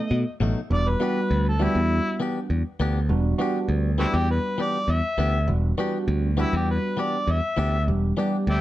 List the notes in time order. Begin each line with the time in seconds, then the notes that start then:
Already playing: A3 B3 D#4 A4 D#5
0.11 B2
0.40 A1 B2 F#3 A3 D#4
0.70 E1 G3 B3 D4 F#4 D5
0.88 B4
1.00 E3 G3 B3 D4 F#4 G4
1.31 D2
1.49 A4
1.59 E3 G3 B3 D4 E4 F#4 G4
1.75 E2
2.20 E3 B3 D4 G4
2.50 E2
2.80 D2 E3 B3 D4 G4
3.09 E1 G3 B3 D4 F#4
3.38 E3 G3 B3 D4 F#4 G4
3.69 D2
3.98 E3 G3 A3 B3 C4 D4 E4 F#4 G4
4.14 E2 G4
4.31 B4
4.58 E3 B3 D4 G4 D5
4.88 E2 E5
5.18 D2 E3 B3 D4 G4
5.47 E1 G3 B3 D4 F#4
5.77 E3 G3 B3 D4 F#4 G4
6.08 D2
6.37 E3 G3 B3 D4 E4 F#4 G4
6.53 E2 G4
6.71 B4
6.97 E3 B3 D4 G4 D5
7.28 E2 E5
7.57 D2 E3 B3 D4 G4
7.87 E1 G3 B3 D4 G4
8.17 E3 G3 B3 D4 G4
8.47 D2 D5 E5 G5